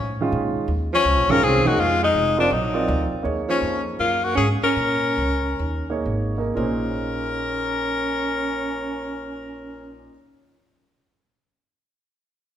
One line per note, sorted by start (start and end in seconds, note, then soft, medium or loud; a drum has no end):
0.00 0.32 A2 medium
0.00 0.19 F3 medium
0.00 0.20 C#4 medium
0.21 0.67 D#3 medium
0.21 0.67 G#3 medium
0.21 0.68 C#4 medium
0.21 0.68 F4 medium
0.32 0.55 A#2 medium
0.56 muted upright bass stroke soft
0.68 1.04 D#2 medium
0.93 1.30 F3 medium
0.93 1.33 C#4 loud
1.05 1.16 C#2 medium
1.16 1.28 A#1 medium
1.29 1.41 G#1 medium
1.29 1.63 D#3 medium
1.29 1.63 G#3 medium
1.29 1.43 C#4 loud
1.29 1.64 C#4 medium
1.29 1.64 F4 medium
1.29 1.45 A#4 loud
1.42 1.64 C2 medium
1.42 1.68 C4 medium
1.42 1.69 G#4 loud
1.65 1.77 D#3 medium
1.65 1.77 G#3 medium
1.65 1.80 A#3 medium
1.65 1.77 C#4 medium
1.65 1.77 D#4 medium
1.65 1.81 F#4 medium
1.65 muted upright bass stroke soft
1.77 2.13 F2 medium
1.77 2.02 G#3 medium
1.77 2.03 F4 loud
2.02 2.36 G#3 medium
2.02 2.37 D#4 loud
2.13 2.49 F1 loud
2.37 2.52 F3 medium
2.37 2.49 C4 medium
2.37 2.54 D4 medium
2.37 2.50 F4 medium
2.37 2.50 A#4 medium
2.37 2.50 D5 medium
2.50 2.86 A#1 medium
2.50 3.11 F#3 medium
2.50 3.12 D#4 medium
2.74 3.21 C4 medium
2.74 3.21 F4 medium
2.74 3.21 A#4 medium
2.74 3.21 D5 medium
2.88 3.10 D2 loud
3.11 muted upright bass stroke soft
3.23 3.60 D#2 medium
3.23 4.27 A#3 medium
3.23 4.28 D#4 medium
3.23 4.28 G#4 medium
3.23 4.28 C#5 medium
3.48 3.82 F3 medium
3.48 3.83 C#4 medium
3.62 3.97 F2 medium
3.98 4.36 F#2 medium
3.98 4.24 A#3 medium
3.98 4.26 F4 medium
4.24 4.35 A#3 medium
4.24 4.37 F#4 medium
4.35 4.60 G#2 medium
4.35 4.47 C#4 medium
4.35 4.49 G#4 medium
4.62 6.03 C#4 medium
4.62 6.04 A#4 medium
4.62 muted upright bass stroke soft
4.76 5.16 A#2 medium
5.17 5.59 C#2 medium
5.59 6.05 D#2 medium
5.90 6.35 A#3 medium
5.90 6.35 D#4 medium
5.90 6.36 G#4 medium
5.90 6.36 C#5 medium
6.05 6.54 G#1 medium
6.38 6.54 A#3 medium
6.38 6.54 D#4 medium
6.38 6.55 G#4 medium
6.38 6.55 A#4 medium
6.55 10.08 A#1 medium
6.55 10.11 A#2 medium
6.55 10.11 A#3 medium
6.55 10.11 C#4 medium
6.55 10.08 C#4 medium
6.55 10.12 D#4 medium
6.55 10.13 G#4 medium
6.55 10.08 A#4 medium
6.55 10.13 C5 medium